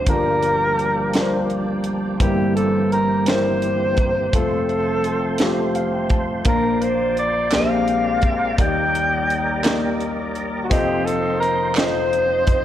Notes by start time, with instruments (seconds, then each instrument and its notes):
Already playing: tonewheel organ D4, alto saxophone C5
0.07 grand piano G1 G2 G3 D4 F4 A4, tonewheel organ F3 A#3 G4, alto saxophone A#4, kick, closed hi-hat
0.16 grand piano A#4
0.43 closed hi-hat
0.79 closed hi-hat
1.14 grand piano G3 D4 F4 A#4, snare, closed hi-hat
1.22 grand piano C5
1.50 closed hi-hat
1.84 closed hi-hat
2.18 grand piano G1 G2 G3 A#3 C4 E4, tonewheel organ G2 E3 C4, alto saxophone G4, kick, closed hi-hat
2.56 alto saxophone A4, closed hi-hat
2.92 alto saxophone A#4, closed hi-hat
3.26 grand piano G3 C4 E4 A#4, alto saxophone C5, snare, closed hi-hat
3.62 closed hi-hat
3.97 kick, closed hi-hat
4.32 grand piano F1 F2 A3 C4 F4 C5, tonewheel organ F3 A3 C5, alto saxophone A4, kick, closed hi-hat
4.69 closed hi-hat
5.04 closed hi-hat
5.38 grand piano A3 C4 F4 G4, snare, closed hi-hat
5.75 grand piano F5, closed hi-hat
5.93 grand piano G5
6.10 grand piano A5, kick, closed hi-hat
6.45 grand piano A#1 A#2 A#3 D4 F4 A#4, tonewheel organ A#3 D5, alto saxophone A#4, kick, closed hi-hat
6.82 alto saxophone C5, closed hi-hat
7.17 alto saxophone D5, closed hi-hat
7.50 grand piano A#1 A#2 G#3 D4 G4 A#4, tonewheel organ G#3 C4 G4 A#4, snare, clap, closed hi-hat
7.55 alto saxophone F5
7.60 grand piano C5
7.88 closed hi-hat
8.22 kick, closed hi-hat
8.58 grand piano D#2 D#3 A#3 D#4 G4 D5, tonewheel organ G3 D#4, alto saxophone G5, kick, closed hi-hat
8.95 closed hi-hat
9.30 closed hi-hat
9.63 grand piano A#3 D#4 G4 D5, snare, clap, closed hi-hat
10.00 closed hi-hat
10.35 closed hi-hat
10.64 alto saxophone F#4
10.70 grand piano F1 F2 C4 F4 A4 D#5, tonewheel organ F3 C4 C5, alto saxophone G4, kick, closed hi-hat
11.05 alto saxophone A4, closed hi-hat
11.40 alto saxophone A#4, closed hi-hat
11.75 grand piano C4 F4 A4 D#5, alto saxophone C5, snare, clap, closed hi-hat
12.13 closed hi-hat
12.47 kick, closed hi-hat